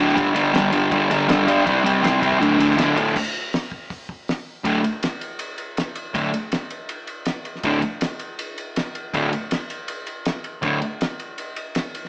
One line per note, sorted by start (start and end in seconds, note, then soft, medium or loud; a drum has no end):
0.00 0.15 D2 medium
0.00 0.16 A2 loud
0.00 0.15 D3 loud
0.08 snare soft
0.16 0.33 G2 medium
0.16 0.34 D3 loud
0.16 0.34 G3 loud
0.16 kick loud
0.16 ride loud
0.34 0.51 G2 medium
0.34 0.52 D3 loud
0.34 0.53 G3 loud
0.34 ride medium
0.52 0.70 G2 loud
0.52 0.71 D3 loud
0.52 0.72 G3 loud
0.52 snare loud
0.52 ride medium
0.72 0.90 G2 medium
0.72 0.90 D3 medium
0.72 0.91 G3 loud
0.72 ride medium
0.91 1.10 G2 medium
0.91 1.10 D3 loud
0.91 1.11 G3 loud
0.91 kick loud
0.91 ride loud
1.11 1.27 G2 medium
1.11 1.28 D3 loud
1.11 1.28 G3 medium
1.11 ride medium
1.28 1.46 G2 medium
1.28 1.46 D3 loud
1.28 1.47 G3 loud
1.28 snare loud
1.28 ride medium
1.47 1.65 G2 medium
1.47 1.65 D3 loud
1.47 1.65 G3 loud
1.47 ride medium
1.65 1.82 C3 medium
1.65 1.83 G3 loud
1.65 1.84 C4 loud
1.65 kick loud
1.65 ride loud
1.83 2.01 C3 medium
1.83 2.02 G3 loud
1.83 2.03 C4 loud
1.83 ride medium
2.02 2.20 C3 loud
2.02 2.20 G3 loud
2.02 2.21 C4 loud
2.02 snare loud
2.02 ride loud
2.21 2.39 C3 medium
2.21 2.40 G3 medium
2.21 2.40 C4 medium
2.21 kick medium
2.21 ride medium
2.32 kick medium
2.39 2.57 D2 medium
2.39 2.58 A2 medium
2.39 2.59 D3 loud
2.39 kick medium
2.39 ride loud
2.58 2.75 D2 medium
2.58 2.76 A2 loud
2.58 2.76 D3 medium
2.58 ride medium
2.71 snare soft
2.76 2.94 D2 medium
2.76 2.96 A2 medium
2.76 2.96 D3 loud
2.76 snare loud
2.76 ride loud
2.96 3.14 D2 loud
2.96 3.14 A2 loud
2.96 3.15 D3 medium
2.96 ride medium
3.08 snare soft
3.16 kick loud
3.16 crash loud
3.53 snare loud
3.53 open hi-hat medium
3.72 kick medium
3.90 kick medium
3.90 open hi-hat soft
4.09 kick medium
4.28 snare loud
4.28 open hi-hat soft
4.64 4.79 D2 medium
4.64 4.80 A2 loud
4.64 4.80 D3 medium
4.64 kick loud
4.64 ride medium
4.84 ride medium
5.03 snare loud
5.03 ride loud
5.21 ride medium
5.39 ride medium
5.58 ride medium
5.77 snare loud
5.77 ride medium
5.95 ride medium
6.14 6.29 D2 medium
6.14 6.30 A2 medium
6.14 6.30 D3 medium
6.14 kick loud
6.14 ride loud
6.34 ride medium
6.52 snare loud
6.52 ride medium
6.70 ride medium
6.89 ride medium
7.07 ride medium
7.25 snare loud
7.25 ride medium
7.45 ride medium
7.55 snare soft
7.63 7.79 D2 medium
7.63 7.80 A2 medium
7.63 7.80 D3 medium
7.63 kick loud
7.63 ride medium
7.82 ride medium
8.01 snare loud
8.01 ride loud
8.19 ride medium
8.39 ride medium
8.58 ride medium
8.76 snare loud
8.76 ride medium
8.95 ride medium
9.14 9.29 D2 medium
9.14 9.29 A2 medium
9.14 9.29 D3 medium
9.14 kick loud
9.14 ride medium
9.33 ride medium
9.51 snare loud
9.51 ride medium
9.70 ride medium
9.88 ride medium
10.07 ride medium
10.25 snare loud
10.25 ride medium
10.44 ride medium
10.62 10.78 D2 medium
10.62 10.78 A2 medium
10.62 10.78 D3 medium
10.62 kick loud
10.62 ride medium
10.82 ride medium
11.01 snare loud
11.01 ride medium
11.20 ride medium
11.38 ride medium
11.56 ride medium
11.75 snare loud
11.75 ride medium
11.95 ride medium
12.05 snare soft